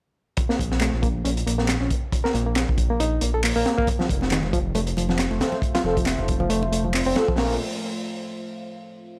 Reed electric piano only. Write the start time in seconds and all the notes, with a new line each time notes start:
0.49 A#3
0.81 A3
1.02 A#3
1.25 C#4
1.46 A#3
1.58 A#3
1.81 C#4
2.24 A#4
2.34 A#3
2.46 A#3
2.90 A#3
3.00 D#4
3.22 A#3
3.34 A4
3.44 A#3
3.56 A#3
3.78 A#3
3.99 F3
4.31 D#3
4.53 F3
4.75 A3
4.97 F3
5.09 F3
5.31 A3
5.75 F4
5.85 F3
5.97 F3
6.40 F3
6.50 A3
6.72 A3
6.85 F3
6.94 C4
7.06 C4
7.28 F3
7.38 A#3